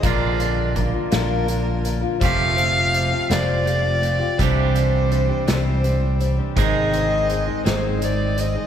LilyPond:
<<
  \new Staff \with { instrumentName = "Fiddle" } { \time 6/8 \key bes \lydian \tempo 4. = 55 d''4 r8 bes'4 r8 | f''4. d''4. | c''4. c''4 r8 | ees''4. c''8 d''8 ees''8 | }
  \new Staff \with { instrumentName = "Steel-string acoustic guitar" } { \time 6/8 \key bes \lydian <bes, f bes d' f' bes'>8 <bes d' f' bes'>8 <bes d' f' bes'>16 <bes d' f' bes'>16 <bes, f bes d' f' bes'>8 <bes d' f' bes'>8 <bes d' f' bes'>16 <bes d' f' bes'>16 | <f a c' f' g'>8 <a c' f' g'>8 <a c' f' g'>16 <c' f' g'>16 <f a c' f' g'>8 <a c' f' g'>8 <a c' f' g'>16 <c' f' g'>16 | <c e g c' d' g'>8 <g c' d' g'>8 <g c' d' g'>16 <g c' d' g'>16 <c e g c' d' g'>8 <g c' d' g'>8 <g c' d' g'>16 <g c' d' g'>16 | <aes, ees aes c' ees' aes'>8 <aes c' ees' aes'>8 <aes c' ees' aes'>16 <aes c' ees' aes'>16 <aes, ees aes c' ees' aes'>8 <aes c' ees' aes'>8 <aes c' ees' aes'>16 <aes c' ees' aes'>16 | }
  \new Staff \with { instrumentName = "Clean electric guitar" } { \time 6/8 \key bes \lydian <bes, d bes d' f'>2. | <f a c' g'>2. | <c e g d' g'>2. | <aes, ees aes c' ees' aes'>2. | }
  \new Staff \with { instrumentName = "Fingered electric bass" } { \clef bass \time 6/8 \key bes \lydian bes,,4. bes,,4. | f,,4. f,,4. | c,4. c,4. | aes,,4. aes,,4. | }
  \new DrumStaff \with { instrumentName = "Drums" } \drummode { \time 6/8 <hh bd>8 hh8 <hh bd>8 <hh sn>8 hh8 hh8 | <hh bd>8 hh8 hh8 <hh sn>8 hh8 hh8 | <hh bd>8 hh8 hh8 <hh sn>8 hh8 hh8 | <hh bd>8 hh8 hh8 <hh sn>8 hh8 hh8 | }
>>